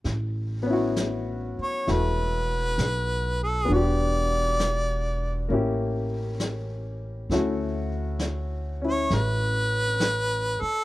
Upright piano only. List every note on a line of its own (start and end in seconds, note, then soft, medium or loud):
0.63 3.63 B3 soft
0.63 3.68 C#4 soft
0.70 1.86 E4 soft
0.70 1.87 F#4 soft
1.87 3.68 E4 soft
1.87 3.69 F#4 soft
1.87 3.70 A4 soft
3.65 5.48 B3 soft
3.65 5.50 D4 soft
3.72 5.51 F#4 soft
3.72 5.52 G4 soft
5.49 7.29 A#3 soft
5.49 7.30 C#4 soft
5.49 7.30 E4 soft
5.54 7.32 G4 soft
7.32 10.84 A3 soft
7.32 8.80 C#4 soft
7.32 8.83 E4 soft
7.32 10.84 F#4 soft
8.82 10.84 C#4 soft
8.82 10.84 E4 soft